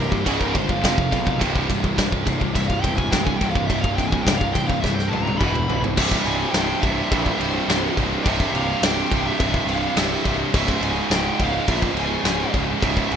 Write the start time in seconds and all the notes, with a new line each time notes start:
Already playing: C1 C2 G2 C3
0.00 A#4
0.10 C2 G2 G4, kick
0.24 C#1 C#2 G#2 C#3 G#4, kick, ride
0.41 A#4, kick
0.53 G1 C#2 G#2 C#3 C5, kick, ride
0.67 C#2 G#2 F5, kick
0.81 F1 F2 C3 F3, kick, snare, ride
0.97 F2 C3, kick
1.11 B1 F2 C3 F3, kick, ride
1.26 F2 C3, kick
1.39 C1 C2 G2 C3, kick, ride
1.55 kick
1.68 C1 C2 G2 C3, kick, ride
1.83 C2 G2, kick
1.97 C1 C2 G2 C3, kick, snare, ride
2.12 kick
2.25 C1 C2 G2 C3, kick, ride
2.40 C2 G2, kick
2.54 C1 C2 G2 C3 E5, kick, ride
2.68 F5, kick
2.81 E1 C2 G2 C3 G5, kick, ride
2.97 C2 G2 G#5, kick
3.12 C1 C2 G2 C3 G5, kick, snare, ride
3.25 C2 G2 G#5, kick
3.37 C1 G5, kick, ride
3.41 C2 G2 C3
3.51 F5
3.55 C2 G2, kick
3.66 C2 G2 C3 E5, kick, ride
3.71 C1
3.81 F5, kick
3.96 C1 C2 G2 C3 G5, kick, ride
4.08 G#5
4.12 C2 G2, kick
4.23 C2 G2 G5, kick
4.27 C1 C3, snare, ride
4.37 F5
4.41 kick
4.53 C1 C2 G2 C3 G5, kick, ride
4.67 C2 G2 F5, kick
4.80 C1 C2 G2 C3 E5, kick
4.85 snare
4.94 G5
4.99 snare
5.08 C2 G2 C3 A5
5.12 C#1, high tom
5.23 C2 G2 A#5
5.27 high tom
5.37 E1 E2 B2 E3 B5, kick
5.41 mid tom
5.53 E2 B2, mid tom
5.68 C#1 E2 B2 E3, floor tom
5.81 E2 B2, floor tom
5.97 C1 C2 G2 C3 E5, kick, crash
6.02 C2 G2 C3
6.12 C2 G2, kick
6.20 C2 G2
6.24 C1 C2 G2 C3 G#5, crash
6.28 C2
6.35 C2 G2
6.42 C2 G2
6.49 C2 G2 G5
6.53 C1 C3, snare, crash
6.57 C2 G2
6.65 C2 G2
6.73 C2 G2
6.80 C1 C2 G2 C3 E5, kick, crash
6.87 C2 G2
6.94 C2 G2
7.02 C2 G2
7.10 A#1 C2 G2 C3 E5, kick, crash
7.18 C2 G2
7.24 C2 G2, kick
7.33 C2 G2
7.39 C1 C2 G2 C3 C5, crash
7.48 C2 G2
7.56 C2 G2
7.62 C2 G2
7.67 C1 C2 C3, snare, crash
7.72 G2
7.79 C2 G2
7.86 C2 G2
7.94 C2 G2 C3, kick
7.98 C1 C2, crash
8.02 G2
8.09 C2 G2
8.17 C2 G2
8.23 C1 C2 G2 C3 E5, kick, crash
8.28 C3
8.32 C2 G2
8.40 C2 G2, kick
8.47 C2 G2
8.54 C1 C2 G2 C3 F5, crash
8.64 C2 G2
8.71 C2 G2
8.78 C1 C2 G2 C3
8.83 C2 G2 G5, snare, crash
8.93 C2 G2
9.01 C2 G2
9.09 C1 C2 G2 C3, kick, crash
9.17 C2 G2
9.24 C2 G2 E5
9.31 C2 G2
9.39 C1 C2 G2 C3 E5, kick, crash
9.47 C2 G2
9.54 C2 G2, kick
9.62 C2 G2
9.67 C1 C2 G2 C3 F5, crash
9.78 C2 G2
9.85 C2 G2
9.92 C1 C2 G2
9.97 C2 G2 C3 E5, snare, crash
10.08 C2 G2
10.15 C2 G2
10.22 C1 C2 G2 C3, kick, crash
10.31 C2 G2
10.39 C2 G2
10.45 C2 G2
10.53 C#1 C#2 G#2 C#3 E5, kick, crash
10.61 C#2 G#2
10.68 C#2 G#2, kick
10.75 C#2 G#2
10.81 C#1 C#2 G#2 C#3 G#5, crash
10.85 C#2
10.92 C#2 G#2
11.00 C#2 G#2
11.08 C#1 C#2 G#2, snare, crash
11.12 C#2 C#3 G5
11.16 G#2
11.23 C#2 G#2
11.31 C#2 G#2
11.39 C#1 C#2 G#2 C#3 F5, kick, crash
11.47 C#2 G#2
11.54 C#2 G#2
11.62 C#2 G#2
11.67 A#1 C#2 C#3 E5, kick, crash
11.71 G#2
11.77 C#2 G#2
11.82 C#2, kick
11.87 G#2
11.94 C#1 C#2 G#2 C#3, crash
12.00 C#2 G#2 G#5
12.08 C#2 G#2
12.16 C#2 G#2
12.24 C#1 C#2 G#2 C#3, snare, crash
12.32 C#2 G#2
12.41 C#2 G#2
12.48 C#2 G#2
12.53 C#1 C#2 G#2 C#3, kick, crash
12.64 C#2 G#2
12.71 C#2 G#2
12.80 C#1 C#2 G#2 C#3, kick, crash
12.85 C#2 E5
12.89 G#2
12.96 C#2 G#2, kick
13.03 C#2 G#2
13.10 C#1 C#2 G#2 C#3 G#5, crash